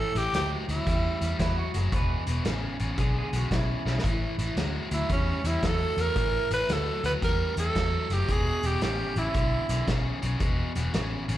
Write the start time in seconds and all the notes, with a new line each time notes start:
Already playing: A2 E3 A4
0.15 A1 A2 E3 G4, closed hi-hat
0.33 D2 A2 F#3 G4, snare, closed hi-hat
0.68 D2 A2 F#3 E4, closed hi-hat
0.87 E2 A2 G3, kick, closed hi-hat
1.21 E2 A2 G3, closed hi-hat
1.39 E2 A2 F#3 E4, kick, snare, closed hi-hat
1.58 F#4
1.74 F#1 A2 F#3 G#4, closed hi-hat
1.92 E1 E2 B2 B4, kick, closed hi-hat
2.27 E1 E2 B2, closed hi-hat
2.45 A1 E2 C#3, snare, closed hi-hat
2.79 A1 E2 C#3, closed hi-hat
2.98 B1 E2 D3 G#4, kick, snare, closed hi-hat
3.19 G#4
3.33 B1 E2 D3 F#4, closed hi-hat
3.51 B1 E2 C#3 E4, kick, snare, closed hi-hat
3.85 B1 E2 C#3, snare
3.99 snare
4.04 A1 A2 E3, kick, closed hi-hat
4.38 A1 A2 E3, closed hi-hat
4.56 D2 A2 F#3, snare, closed hi-hat
4.91 D2 A2 F#3 E4, closed hi-hat
5.09 E2 A2 G3 C#4, kick, closed hi-hat
5.44 E2 A2 G3 E4, closed hi-hat
5.63 E2 A2 F#3 A4, kick, snare, closed hi-hat
5.97 E2 A2 F#3 A#4, closed hi-hat
6.16 A1 A2 E3, kick, closed hi-hat
6.50 A1 A2 E3 B4, closed hi-hat
6.68 D2 A2 F#3 A4, snare, closed hi-hat
7.04 D2 A2 F#3 B4, closed hi-hat
7.22 E2 A2 G3 A#4, kick, closed hi-hat
7.56 E2 A2 G3 A4, closed hi-hat
7.75 E2 A2 F#3, kick, snare, closed hi-hat
8.10 F#1 A2 F#3 G4, closed hi-hat
8.28 E1 E2 B2 G#4, kick, closed hi-hat
8.63 E1 E2 B2 G4, closed hi-hat
8.81 A1 E2 C#3 G4, snare, closed hi-hat
9.16 A1 E2 C#3 E4, closed hi-hat
9.34 B1 E2 D3, kick, closed hi-hat
9.69 B1 E2 D3, closed hi-hat
9.87 B1 E2 C#3, kick, snare, closed hi-hat
10.22 B1 E2 C#3, closed hi-hat
10.40 E1 E2 B2, kick, closed hi-hat
10.75 E1 E2 B2, closed hi-hat
10.94 A1 E2 C#3, snare, closed hi-hat
11.28 A1 E2 C#3, closed hi-hat